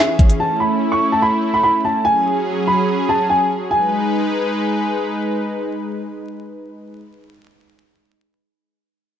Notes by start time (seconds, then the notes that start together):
Already playing: E3 C#4 G#4
0.00 E5
0.19 kick, closed hi-hat
0.30 closed hi-hat
0.40 A3 E4 A5
0.60 B5
0.92 C#6
1.12 A5
1.22 B5
1.54 B5
1.63 B5
1.85 A5
2.05 F#3 C#4 G#4 G#5
2.67 B5
3.09 A5
3.30 G#5
3.71 G#3 D#4 B4 G#5